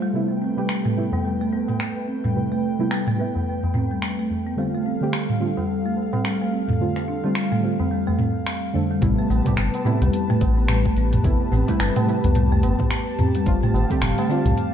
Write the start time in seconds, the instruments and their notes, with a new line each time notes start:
Already playing: synth stab D3 F4, analog synth pad A3 F5
0.02 marimba G3
0.13 synth stab C3 G3 A3 B3 E4, analog synth pad B4 G5
0.30 tabla tin
0.42 marimba C4
0.56 synth stab C3 G3 A3 G4 B4, marimba G3
0.69 finger snap
0.85 marimba A3, mid tom
0.96 synth stab C3 G3 A3 B3 E4
1.12 marimba B3, tabla na, tabla tin, tabla ge
1.25 marimba G3
1.41 marimba A3
1.53 marimba B3, tabla tin
1.68 mid tom, tabla na
1.80 finger snap
1.96 tabla tin
2.08 marimba C4
2.24 marimba G3, mid tom, tabla ge
2.35 synth stab C3 G3 A3 E4 B4
2.52 marimba A3, tabla tin
2.79 synth stab C3 G3 A3 E4 B4, marimba B3
2.91 marimba G3, finger snap
3.07 marimba A3, mid tom
3.17 synth stab C3 G3 A3 E4 B4, marimba B3
3.35 tabla na, tabla tin, tabla ge
3.63 tabla na, tabla ge
3.74 marimba C4, mid tom
3.91 marimba G3
4.02 finger snap
4.19 marimba A3
4.30 tabla ge
4.47 marimba B3
4.56 synth stab D3 G3 A3 C4 F4, analog synth pad G3 A4 F5, marimba G3
4.74 marimba A3, tabla tin
4.86 marimba C4
5.01 synth stab D3 G3 A3 C4 G4
5.13 finger snap
5.29 mid tom
5.39 synth stab D3 G3 A3 C4 F4, marimba D4
5.57 marimba G3, tabla na, tabla tin, tabla ge
5.86 marimba A3
5.97 tabla tin
6.13 marimba C4, mid tom, tabla na
6.25 marimba G3, finger snap
6.41 marimba A3, tabla tin
6.53 marimba C4
6.68 mid tom, tabla ge
6.79 synth stab D3 G3 A3 C4 F4
6.96 finger snap, tabla tin
7.08 marimba D4, tabla na
7.23 synth stab D3 G3 A3 C4 F4, marimba G3
7.35 finger snap
7.52 marimba A3, mid tom
7.60 synth stab D3 G3 A3 C4
7.65 synth stab F4
7.80 marimba C4, tabla na, tabla tin, tabla ge
7.91 marimba G3
8.07 marimba A3, tabla na, tabla ge
8.18 marimba C4, mid tom
8.47 finger snap
8.73 synth stab D3 G3 A3 C4 A4, marimba D4, tabla ge
8.91 marimba G3
9.01 analog synth bass A1, synth stab C3 G3 A3 B3 E4, marimba G3, analog synth pad G4 B4 A5, kick, closed hi-hat, mid tom, cabasa
9.18 marimba A3, tabla tin
9.30 analog synth bass A1, marimba B3, tabla na, cabasa
9.44 synth stab C3 G3 A3 B3 G4, kick, closed hi-hat, mid tom, cabasa
9.57 analog synth bass G1, finger snap, closed hi-hat, cabasa
9.74 closed hi-hat, tabla na, cabasa
9.84 synth stab C3 G3 A3 B3 E4, marimba C4, mid tom, cabasa
10.01 analog synth bass C2, marimba G3, closed hi-hat, tabla tin, tabla ge, cabasa
10.13 closed hi-hat, cabasa
10.30 marimba A3, mid tom
10.41 analog synth bass A1, kick, closed hi-hat, tabla na, tabla tin, cabasa
10.58 marimba B3, cabasa
10.68 marimba G3, finger snap, closed hi-hat, mid tom, cabasa
10.85 marimba A3, kick, tabla tin, cabasa
10.97 analog synth bass A1, marimba B3, closed hi-hat, cabasa
11.13 closed hi-hat, mid tom, tabla ge, cabasa
11.23 analog synth bass A1, synth stab C3 G3 A3 B3 E4, kick, closed hi-hat, cabasa
11.41 tabla tin
11.52 analog synth bass A1, marimba C4, mid tom, tabla na, cabasa
11.67 synth stab C3 G3 A3 E4 B4, marimba G3, kick, closed hi-hat, cabasa
11.79 analog synth bass G1, finger snap, closed hi-hat, cabasa
11.96 marimba A3, closed hi-hat, mid tom, tabla na, cabasa
12.05 synth stab C3 G3 A3 E4 B4, cabasa
12.24 analog synth bass C2, marimba B3, closed hi-hat, tabla tin, tabla ge, cabasa
12.35 marimba G3, closed hi-hat, mid tom, cabasa
12.52 marimba A3, tabla ge
12.63 analog synth bass G1, marimba B3, closed hi-hat, tabla na, cabasa
12.79 kick, mid tom, tabla na, cabasa
12.91 finger snap, closed hi-hat, cabasa
13.08 cabasa
13.19 marimba C4, closed hi-hat, mid tom, tabla ge, cabasa
13.35 marimba G3, closed hi-hat, cabasa
13.45 analog synth bass G1, synth stab D3 G3 A3 C4 F4, analog synth pad F5, kick, closed hi-hat, cabasa
13.63 marimba A3, mid tom, tabla tin
13.73 analog synth bass G1, tabla na, cabasa
13.89 synth stab D3 G3 A3 C4 G4, marimba C4, kick, closed hi-hat, cabasa
14.01 analog synth bass F1, marimba G3, finger snap, closed hi-hat, mid tom, cabasa
14.18 marimba A3, closed hi-hat, tabla na, cabasa
14.29 synth stab D3 G3 A3 C4 F4, marimba C4, cabasa
14.45 analog synth bass C2, closed hi-hat, mid tom, tabla tin, tabla ge, cabasa
14.58 closed hi-hat, cabasa